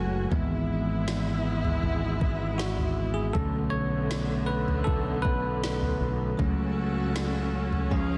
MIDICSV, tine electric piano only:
0, 0, Header, 1, 2, 480
1, 0, Start_track
1, 0, Key_signature, 3, "minor"
1, 0, Tempo, 759494
1, 198, Time_signature, 4, 2, 24, 8
1, 5168, End_track
2, 0, Start_track
2, 0, Title_t, "Tine electric piano"
2, 0, Program_c, 0, 4
2, 0, Control_c, 0, 64, 127
2, 0, Note_on_c, 0, 54, 44
2, 0, Note_on_c, 0, 56, 42
2, 0, Note_on_c, 0, 57, 49
2, 0, Note_on_c, 0, 66, 72
2, 0, Note_on_c, 0, 68, 53
2, 0, Note_on_c, 0, 69, 90
2, 0, Note_on_c, 0, 71, 85
2, 178, Note_off_c, 0, 68, 0
2, 194, Note_on_c, 0, 52, 53
2, 198, Note_off_c, 0, 56, 0
2, 198, Note_on_c, 0, 56, 51
2, 202, Note_on_c, 0, 59, 60
2, 206, Control_c, 0, 64, 0
2, 207, Note_off_c, 0, 66, 0
2, 209, Note_off_c, 0, 54, 0
2, 210, Note_off_c, 0, 69, 0
2, 210, Note_off_c, 0, 71, 0
2, 212, Note_off_c, 0, 57, 0
2, 302, Control_c, 0, 64, 127
2, 1631, Note_on_c, 0, 66, 78
2, 1984, Note_on_c, 0, 68, 81
2, 2005, Note_off_c, 0, 66, 0
2, 2091, Note_off_c, 0, 52, 0
2, 2093, Note_off_c, 0, 56, 0
2, 2095, Note_off_c, 0, 59, 0
2, 2102, Note_off_c, 0, 68, 0
2, 2107, Note_on_c, 0, 69, 99
2, 2117, Note_on_c, 0, 50, 55
2, 2120, Note_on_c, 0, 57, 50
2, 2124, Note_on_c, 0, 61, 64
2, 2125, Control_c, 0, 64, 0
2, 2231, Control_c, 0, 64, 127
2, 2340, Note_on_c, 0, 73, 104
2, 2360, Note_off_c, 0, 69, 0
2, 2437, Note_off_c, 0, 50, 0
2, 2439, Note_off_c, 0, 57, 0
2, 2440, Note_off_c, 0, 61, 0
2, 2821, Note_on_c, 0, 71, 89
2, 2844, Note_off_c, 0, 73, 0
2, 3061, Note_on_c, 0, 69, 94
2, 3077, Note_off_c, 0, 71, 0
2, 3173, Note_off_c, 0, 69, 0
2, 3300, Note_on_c, 0, 71, 85
2, 3764, Note_off_c, 0, 71, 0
2, 4029, Note_on_c, 0, 54, 57
2, 4036, Note_on_c, 0, 57, 50
2, 4038, Note_on_c, 0, 61, 58
2, 4047, Control_c, 0, 64, 0
2, 4143, Control_c, 0, 64, 127
2, 4728, Note_off_c, 0, 54, 0
2, 4732, Note_off_c, 0, 57, 0
2, 4733, Note_off_c, 0, 61, 0
2, 4996, Note_on_c, 0, 53, 53
2, 5002, Note_on_c, 0, 56, 49
2, 5002, Note_on_c, 0, 61, 62
2, 5005, Control_c, 0, 64, 0
2, 5119, Control_c, 0, 64, 127
2, 5168, Note_off_c, 0, 53, 0
2, 5168, Note_off_c, 0, 56, 0
2, 5168, Note_off_c, 0, 61, 0
2, 5168, End_track
0, 0, End_of_file